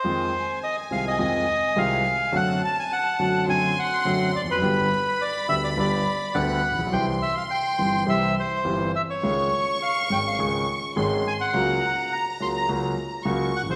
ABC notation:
X:1
M:4/4
L:1/16
Q:1/4=105
K:Cphr
V:1 name="Violin section"
a16 | =a8 c'8 | =b16 | c'12- c'2 z2 |
d'12 c'4 | b12 d'4 |]
V:2 name="Bandoneon"
c4 e2 f e e4 f4 | ^f2 =a _a f4 a2 f4 =d =B- | =B4 =d2 =e d d4 _g4 | g2 =e f g4 e2 c4 e d- |
d4 f2 g f2 z4 z a _g- | _g4 b2 c' b2 z4 z g c |]
V:3 name="Grand piano" clef=bass
[F,,E,F,A,CF]2 z4 [C,,C,E,A,CF]2 [F,,E,F,A,CF]2 z2 [C,,C,E,A,CF]2 z2 | [^F,,=D,^F,=A,C^F]2 z4 [F,,D,F,A,CF]2 [F,,D,F,A,CF]2 z2 [F,,D,F,A,CF]2 z/2 =E,,/2 =F,,/2 ^F,,/2 | [G,,,G,,=D,G,=B,G]2 z4 [=D,,D,G,B,G]2 [G,,,G,,D,G,B,G]2 z2 [D,,D,G,B,G]2 z/2 =A,,,/2 _B,,,/2 =B,,,/2 | [C,,C,=E,G,CG]2 z4 [G,,,G,,E,G,CG]2 [C,,C,E,G,CG]2 z2 [G,,,G,,E,G,CG]2 z2 |
[D,,D,E,A,DA]2 z4 [A,,,A,,E,A,DA]2 [D,,D,E,A,DA]2 z2 [A,,,A,,E,A,DA]2 z2 | [D,,D,_G,B,_G]2 z4 [D,,D,G,B,G]2 [D,,D,G,B,G]2 z2 [D,,D,G,B,G]2 z/2 =A,,,/2 B,,,/2 z/2 |]